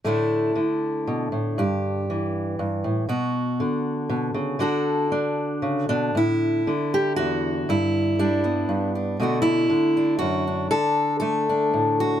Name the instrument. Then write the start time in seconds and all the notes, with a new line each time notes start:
steel-string acoustic guitar
0.04 A2 D3 A3 D4 E4
0.55 D3
1.07 B2
1.32 A2
1.58 G2 G4
2.10 E3
2.59 G2
2.84 A2
3.09 B2 F#4
3.60 D3
4.09 B2
4.34 C#3
4.59 D3 D4 F#4 A4
5.12 D4
5.62 C#3
5.89 B2 D4
6.15 A2 E4
6.67 D3
6.94 G4
7.16 E2 F#4
7.69 G2 E4
8.19 G3 D4
8.44 B3
8.69 G2
8.95 D4
9.20 B2 D3 A3 D4 F#4
9.42 E4
9.70 D3
9.97 D4
10.19 F#2 F#4
10.47 D4
10.71 D3 A4
11.20 A3 A4
11.49 D4
11.74 A2
12.00 F#4